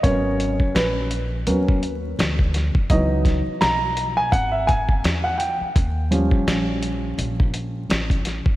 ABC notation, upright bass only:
X:1
M:4/4
L:1/16
Q:"Swing 16ths" 1/4=84
K:G#m
V:1 name="Upright bass" clef=bass
G,,,3 z A,,,4 D,,4 =D,,3 z | C,,3 z B,,,4 G,,,4 E,,3 z | D,,3 z A,,,4 A,,,4 =A,,,3 z |]